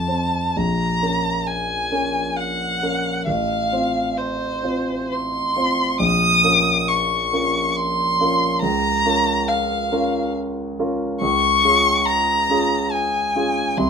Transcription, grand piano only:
0.00 0.54 F2 soft
0.08 0.52 C4 soft
0.08 0.53 C5 soft
0.56 1.01 A#1 soft
1.02 1.88 C#4 soft
1.02 1.88 A#4 soft
1.92 2.78 C#4 soft
1.92 2.78 A#4 soft
2.82 3.23 C#4 soft
2.82 3.23 A#4 soft
3.27 3.70 A1 soft
3.72 4.60 C4 soft
3.72 4.60 F4 soft
3.72 4.60 C5 soft
4.63 5.52 C4 soft
4.63 5.52 F4 soft
4.63 5.53 C5 soft
5.56 5.96 C4 soft
5.56 5.96 F4 soft
5.56 5.96 C5 soft
5.99 6.42 A#1 soft
6.44 7.29 C#4 soft
6.44 7.29 F4 soft
6.44 7.29 A#4 soft
7.33 8.15 C#4 soft
7.33 8.16 F4 soft
7.33 8.16 A#4 soft
8.20 8.59 C#4 soft
8.20 8.59 F4 soft
8.20 8.59 A#4 soft
8.62 9.04 C#2 soft
9.05 9.88 C#4 soft
9.05 9.88 F4 soft
9.05 9.88 A#4 soft
9.92 10.75 C#4 soft
9.92 10.75 F4 soft
9.92 10.75 A#4 soft
10.79 11.18 C#4 soft
10.79 11.18 F4 soft
10.79 11.18 A#4 soft
11.21 11.63 C#2 soft
11.64 12.45 C#4 soft
11.64 12.45 F4 soft
11.64 12.45 G#4 soft
12.50 13.31 C#4 soft
12.50 13.32 F4 soft
12.50 13.32 G#4 soft
13.36 13.74 C#4 soft
13.36 13.74 F4 soft
13.36 13.75 G#4 soft
13.77 13.90 C2 medium

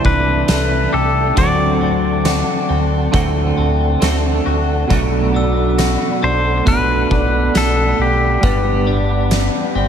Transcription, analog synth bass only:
0.05 0.44 C2 loud
0.49 0.88 C2 loud
0.94 1.32 C2 medium
1.37 2.43 D2 medium
2.70 3.08 D2 medium
3.14 3.53 D2 medium
3.58 3.97 D2 loud
4.02 4.41 D2 loud
4.46 4.85 D2 loud
4.91 5.97 B1 medium
6.23 6.61 B1 medium
6.67 7.05 B1 loud
7.11 7.50 B1 loud
7.55 7.94 B1 loud
7.99 8.38 B1 loud
8.43 9.49 G1 loud
9.75 9.88 G1 medium

